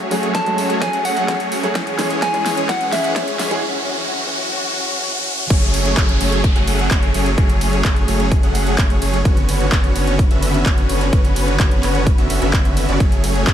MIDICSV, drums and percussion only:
0, 0, Header, 1, 2, 480
1, 0, Start_track
1, 0, Key_signature, 3, "minor"
1, 0, Tempo, 468750
1, 1795, Time_signature, 4, 2, 24, 8
1, 13860, End_track
2, 0, Start_track
2, 0, Title_t, "Drums"
2, 115, Note_on_c, 9, 46, 98
2, 217, Note_off_c, 9, 46, 0
2, 235, Note_on_c, 9, 42, 38
2, 338, Note_off_c, 9, 42, 0
2, 355, Note_on_c, 9, 36, 111
2, 355, Note_on_c, 9, 38, 62
2, 355, Note_on_c, 9, 42, 64
2, 457, Note_off_c, 9, 36, 0
2, 457, Note_off_c, 9, 38, 0
2, 457, Note_off_c, 9, 42, 0
2, 475, Note_on_c, 9, 42, 41
2, 577, Note_off_c, 9, 42, 0
2, 595, Note_on_c, 9, 46, 90
2, 697, Note_off_c, 9, 46, 0
2, 715, Note_on_c, 9, 42, 39
2, 817, Note_off_c, 9, 42, 0
2, 835, Note_on_c, 9, 36, 115
2, 835, Note_on_c, 9, 38, 66
2, 835, Note_on_c, 9, 42, 66
2, 937, Note_off_c, 9, 36, 0
2, 938, Note_off_c, 9, 38, 0
2, 938, Note_off_c, 9, 42, 0
2, 955, Note_on_c, 9, 42, 39
2, 1058, Note_off_c, 9, 42, 0
2, 1075, Note_on_c, 9, 46, 100
2, 1178, Note_off_c, 9, 46, 0
2, 1195, Note_on_c, 9, 42, 39
2, 1297, Note_off_c, 9, 42, 0
2, 1315, Note_on_c, 9, 36, 112
2, 1315, Note_on_c, 9, 38, 68
2, 1315, Note_on_c, 9, 42, 65
2, 1417, Note_off_c, 9, 36, 0
2, 1417, Note_off_c, 9, 38, 0
2, 1417, Note_off_c, 9, 42, 0
2, 1434, Note_on_c, 9, 42, 39
2, 1537, Note_off_c, 9, 42, 0
2, 1554, Note_on_c, 9, 46, 88
2, 1657, Note_off_c, 9, 46, 0
2, 1674, Note_on_c, 9, 42, 39
2, 1777, Note_off_c, 9, 42, 0
2, 1794, Note_on_c, 9, 38, 69
2, 1794, Note_on_c, 9, 42, 65
2, 1795, Note_on_c, 9, 36, 112
2, 1897, Note_off_c, 9, 36, 0
2, 1897, Note_off_c, 9, 38, 0
2, 1897, Note_off_c, 9, 42, 0
2, 1915, Note_on_c, 9, 42, 42
2, 2017, Note_off_c, 9, 42, 0
2, 2034, Note_on_c, 9, 38, 76
2, 2034, Note_on_c, 9, 46, 97
2, 2137, Note_off_c, 9, 38, 0
2, 2137, Note_off_c, 9, 46, 0
2, 2155, Note_on_c, 9, 42, 41
2, 2257, Note_off_c, 9, 42, 0
2, 2275, Note_on_c, 9, 36, 111
2, 2275, Note_on_c, 9, 38, 78
2, 2275, Note_on_c, 9, 42, 67
2, 2377, Note_off_c, 9, 36, 0
2, 2377, Note_off_c, 9, 38, 0
2, 2377, Note_off_c, 9, 42, 0
2, 2396, Note_on_c, 9, 42, 43
2, 2498, Note_off_c, 9, 42, 0
2, 2516, Note_on_c, 9, 38, 82
2, 2516, Note_on_c, 9, 46, 87
2, 2618, Note_off_c, 9, 38, 0
2, 2618, Note_off_c, 9, 46, 0
2, 2636, Note_on_c, 9, 42, 41
2, 2738, Note_off_c, 9, 42, 0
2, 2755, Note_on_c, 9, 36, 116
2, 2756, Note_on_c, 9, 38, 83
2, 2756, Note_on_c, 9, 42, 68
2, 2857, Note_off_c, 9, 36, 0
2, 2858, Note_off_c, 9, 38, 0
2, 2858, Note_off_c, 9, 42, 0
2, 2875, Note_on_c, 9, 42, 42
2, 2978, Note_off_c, 9, 42, 0
2, 2995, Note_on_c, 9, 38, 88
2, 2995, Note_on_c, 9, 46, 100
2, 3098, Note_off_c, 9, 38, 0
2, 3098, Note_off_c, 9, 46, 0
2, 3116, Note_on_c, 9, 42, 41
2, 3218, Note_off_c, 9, 42, 0
2, 3235, Note_on_c, 9, 36, 110
2, 3236, Note_on_c, 9, 38, 86
2, 3236, Note_on_c, 9, 42, 68
2, 3338, Note_off_c, 9, 36, 0
2, 3338, Note_off_c, 9, 38, 0
2, 3338, Note_off_c, 9, 42, 0
2, 3356, Note_on_c, 9, 42, 42
2, 3458, Note_off_c, 9, 42, 0
2, 3476, Note_on_c, 9, 38, 91
2, 3476, Note_on_c, 9, 46, 88
2, 3578, Note_off_c, 9, 38, 0
2, 3578, Note_off_c, 9, 46, 0
2, 3596, Note_on_c, 9, 42, 41
2, 3698, Note_off_c, 9, 42, 0
2, 5636, Note_on_c, 9, 36, 120
2, 5636, Note_on_c, 9, 42, 69
2, 5636, Note_on_c, 9, 49, 105
2, 5738, Note_off_c, 9, 36, 0
2, 5738, Note_off_c, 9, 42, 0
2, 5738, Note_off_c, 9, 49, 0
2, 5756, Note_on_c, 9, 42, 41
2, 5858, Note_off_c, 9, 42, 0
2, 5876, Note_on_c, 9, 46, 103
2, 5876, Note_on_c, 9, 51, 77
2, 5978, Note_off_c, 9, 46, 0
2, 5978, Note_off_c, 9, 51, 0
2, 5996, Note_on_c, 9, 42, 42
2, 6098, Note_off_c, 9, 42, 0
2, 6115, Note_on_c, 9, 39, 126
2, 6116, Note_on_c, 9, 36, 119
2, 6116, Note_on_c, 9, 42, 68
2, 6217, Note_off_c, 9, 39, 0
2, 6218, Note_off_c, 9, 36, 0
2, 6218, Note_off_c, 9, 42, 0
2, 6235, Note_on_c, 9, 42, 43
2, 6338, Note_off_c, 9, 42, 0
2, 6356, Note_on_c, 9, 46, 95
2, 6356, Note_on_c, 9, 51, 80
2, 6458, Note_off_c, 9, 46, 0
2, 6458, Note_off_c, 9, 51, 0
2, 6475, Note_on_c, 9, 42, 42
2, 6577, Note_off_c, 9, 42, 0
2, 6595, Note_on_c, 9, 36, 121
2, 6595, Note_on_c, 9, 42, 68
2, 6698, Note_off_c, 9, 36, 0
2, 6698, Note_off_c, 9, 42, 0
2, 6715, Note_on_c, 9, 42, 43
2, 6818, Note_off_c, 9, 42, 0
2, 6835, Note_on_c, 9, 46, 107
2, 6835, Note_on_c, 9, 51, 80
2, 6938, Note_off_c, 9, 46, 0
2, 6938, Note_off_c, 9, 51, 0
2, 6956, Note_on_c, 9, 42, 42
2, 7058, Note_off_c, 9, 42, 0
2, 7074, Note_on_c, 9, 39, 124
2, 7075, Note_on_c, 9, 36, 117
2, 7075, Note_on_c, 9, 42, 68
2, 7176, Note_off_c, 9, 39, 0
2, 7178, Note_off_c, 9, 36, 0
2, 7178, Note_off_c, 9, 42, 0
2, 7195, Note_on_c, 9, 42, 43
2, 7297, Note_off_c, 9, 42, 0
2, 7315, Note_on_c, 9, 46, 94
2, 7315, Note_on_c, 9, 51, 78
2, 7418, Note_off_c, 9, 46, 0
2, 7418, Note_off_c, 9, 51, 0
2, 7435, Note_on_c, 9, 42, 42
2, 7537, Note_off_c, 9, 42, 0
2, 7555, Note_on_c, 9, 36, 124
2, 7555, Note_on_c, 9, 42, 66
2, 7658, Note_off_c, 9, 36, 0
2, 7658, Note_off_c, 9, 42, 0
2, 7675, Note_on_c, 9, 42, 43
2, 7777, Note_off_c, 9, 42, 0
2, 7795, Note_on_c, 9, 46, 109
2, 7795, Note_on_c, 9, 51, 75
2, 7897, Note_off_c, 9, 46, 0
2, 7897, Note_off_c, 9, 51, 0
2, 7915, Note_on_c, 9, 42, 41
2, 8017, Note_off_c, 9, 42, 0
2, 8034, Note_on_c, 9, 39, 127
2, 8035, Note_on_c, 9, 36, 122
2, 8035, Note_on_c, 9, 42, 68
2, 8136, Note_off_c, 9, 39, 0
2, 8137, Note_off_c, 9, 42, 0
2, 8138, Note_off_c, 9, 36, 0
2, 8155, Note_on_c, 9, 42, 42
2, 8257, Note_off_c, 9, 42, 0
2, 8275, Note_on_c, 9, 46, 96
2, 8275, Note_on_c, 9, 51, 78
2, 8377, Note_off_c, 9, 46, 0
2, 8377, Note_off_c, 9, 51, 0
2, 8395, Note_on_c, 9, 42, 41
2, 8497, Note_off_c, 9, 42, 0
2, 8515, Note_on_c, 9, 36, 121
2, 8515, Note_on_c, 9, 42, 68
2, 8617, Note_off_c, 9, 36, 0
2, 8617, Note_off_c, 9, 42, 0
2, 8635, Note_on_c, 9, 42, 41
2, 8738, Note_off_c, 9, 42, 0
2, 8755, Note_on_c, 9, 46, 110
2, 8755, Note_on_c, 9, 51, 79
2, 8857, Note_off_c, 9, 46, 0
2, 8857, Note_off_c, 9, 51, 0
2, 8875, Note_on_c, 9, 42, 42
2, 8977, Note_off_c, 9, 42, 0
2, 8993, Note_on_c, 9, 39, 126
2, 8994, Note_on_c, 9, 42, 68
2, 8995, Note_on_c, 9, 36, 125
2, 9095, Note_off_c, 9, 39, 0
2, 9097, Note_off_c, 9, 36, 0
2, 9097, Note_off_c, 9, 42, 0
2, 9115, Note_on_c, 9, 42, 41
2, 9218, Note_off_c, 9, 42, 0
2, 9235, Note_on_c, 9, 46, 98
2, 9235, Note_on_c, 9, 51, 78
2, 9337, Note_off_c, 9, 46, 0
2, 9337, Note_off_c, 9, 51, 0
2, 9355, Note_on_c, 9, 42, 40
2, 9457, Note_off_c, 9, 42, 0
2, 9474, Note_on_c, 9, 42, 64
2, 9475, Note_on_c, 9, 36, 127
2, 9577, Note_off_c, 9, 36, 0
2, 9577, Note_off_c, 9, 42, 0
2, 9595, Note_on_c, 9, 42, 38
2, 9697, Note_off_c, 9, 42, 0
2, 9714, Note_on_c, 9, 46, 111
2, 9714, Note_on_c, 9, 51, 74
2, 9817, Note_off_c, 9, 46, 0
2, 9817, Note_off_c, 9, 51, 0
2, 9835, Note_on_c, 9, 42, 39
2, 9937, Note_off_c, 9, 42, 0
2, 9954, Note_on_c, 9, 39, 124
2, 9955, Note_on_c, 9, 36, 126
2, 9955, Note_on_c, 9, 42, 63
2, 10056, Note_off_c, 9, 39, 0
2, 10057, Note_off_c, 9, 36, 0
2, 10057, Note_off_c, 9, 42, 0
2, 10075, Note_on_c, 9, 42, 40
2, 10177, Note_off_c, 9, 42, 0
2, 10195, Note_on_c, 9, 46, 98
2, 10195, Note_on_c, 9, 51, 77
2, 10297, Note_off_c, 9, 46, 0
2, 10297, Note_off_c, 9, 51, 0
2, 10315, Note_on_c, 9, 42, 40
2, 10417, Note_off_c, 9, 42, 0
2, 10435, Note_on_c, 9, 36, 127
2, 10435, Note_on_c, 9, 42, 64
2, 10537, Note_off_c, 9, 36, 0
2, 10538, Note_off_c, 9, 42, 0
2, 10555, Note_on_c, 9, 42, 42
2, 10657, Note_off_c, 9, 42, 0
2, 10675, Note_on_c, 9, 46, 109
2, 10675, Note_on_c, 9, 51, 75
2, 10777, Note_off_c, 9, 46, 0
2, 10777, Note_off_c, 9, 51, 0
2, 10796, Note_on_c, 9, 42, 39
2, 10898, Note_off_c, 9, 42, 0
2, 10914, Note_on_c, 9, 39, 121
2, 10915, Note_on_c, 9, 36, 125
2, 10915, Note_on_c, 9, 42, 64
2, 11016, Note_off_c, 9, 39, 0
2, 11017, Note_off_c, 9, 36, 0
2, 11018, Note_off_c, 9, 42, 0
2, 11036, Note_on_c, 9, 42, 39
2, 11138, Note_off_c, 9, 42, 0
2, 11156, Note_on_c, 9, 46, 98
2, 11156, Note_on_c, 9, 51, 75
2, 11258, Note_off_c, 9, 46, 0
2, 11258, Note_off_c, 9, 51, 0
2, 11275, Note_on_c, 9, 42, 38
2, 11378, Note_off_c, 9, 42, 0
2, 11395, Note_on_c, 9, 36, 126
2, 11396, Note_on_c, 9, 42, 62
2, 11497, Note_off_c, 9, 36, 0
2, 11498, Note_off_c, 9, 42, 0
2, 11516, Note_on_c, 9, 42, 39
2, 11618, Note_off_c, 9, 42, 0
2, 11635, Note_on_c, 9, 46, 109
2, 11635, Note_on_c, 9, 51, 75
2, 11737, Note_off_c, 9, 46, 0
2, 11737, Note_off_c, 9, 51, 0
2, 11756, Note_on_c, 9, 42, 39
2, 11858, Note_off_c, 9, 42, 0
2, 11874, Note_on_c, 9, 39, 117
2, 11875, Note_on_c, 9, 36, 122
2, 11876, Note_on_c, 9, 42, 63
2, 11977, Note_off_c, 9, 39, 0
2, 11978, Note_off_c, 9, 36, 0
2, 11978, Note_off_c, 9, 42, 0
2, 11995, Note_on_c, 9, 42, 39
2, 12098, Note_off_c, 9, 42, 0
2, 12114, Note_on_c, 9, 39, 37
2, 12116, Note_on_c, 9, 46, 97
2, 12116, Note_on_c, 9, 51, 79
2, 12217, Note_off_c, 9, 39, 0
2, 12218, Note_off_c, 9, 46, 0
2, 12218, Note_off_c, 9, 51, 0
2, 12235, Note_on_c, 9, 42, 38
2, 12338, Note_off_c, 9, 42, 0
2, 12355, Note_on_c, 9, 36, 124
2, 12356, Note_on_c, 9, 42, 64
2, 12457, Note_off_c, 9, 36, 0
2, 12458, Note_off_c, 9, 42, 0
2, 12476, Note_on_c, 9, 42, 38
2, 12578, Note_off_c, 9, 42, 0
2, 12595, Note_on_c, 9, 46, 108
2, 12595, Note_on_c, 9, 51, 76
2, 12697, Note_off_c, 9, 46, 0
2, 12697, Note_off_c, 9, 51, 0
2, 12715, Note_on_c, 9, 42, 39
2, 12818, Note_off_c, 9, 42, 0
2, 12834, Note_on_c, 9, 39, 118
2, 12835, Note_on_c, 9, 36, 123
2, 12835, Note_on_c, 9, 42, 63
2, 12937, Note_off_c, 9, 39, 0
2, 12938, Note_off_c, 9, 36, 0
2, 12938, Note_off_c, 9, 42, 0
2, 12955, Note_on_c, 9, 42, 38
2, 13057, Note_off_c, 9, 42, 0
2, 13075, Note_on_c, 9, 46, 97
2, 13075, Note_on_c, 9, 51, 77
2, 13177, Note_off_c, 9, 46, 0
2, 13177, Note_off_c, 9, 51, 0
2, 13195, Note_on_c, 9, 42, 37
2, 13297, Note_off_c, 9, 42, 0
2, 13315, Note_on_c, 9, 36, 120
2, 13315, Note_on_c, 9, 42, 60
2, 13417, Note_off_c, 9, 36, 0
2, 13417, Note_off_c, 9, 42, 0
2, 13435, Note_on_c, 9, 42, 38
2, 13537, Note_off_c, 9, 42, 0
2, 13555, Note_on_c, 9, 46, 105
2, 13555, Note_on_c, 9, 51, 80
2, 13657, Note_off_c, 9, 46, 0
2, 13657, Note_off_c, 9, 51, 0
2, 13675, Note_on_c, 9, 42, 39
2, 13778, Note_off_c, 9, 42, 0
2, 13794, Note_on_c, 9, 39, 113
2, 13795, Note_on_c, 9, 36, 117
2, 13795, Note_on_c, 9, 42, 65
2, 13860, Note_off_c, 9, 36, 0
2, 13860, Note_off_c, 9, 39, 0
2, 13860, Note_off_c, 9, 42, 0
2, 13860, End_track
0, 0, End_of_file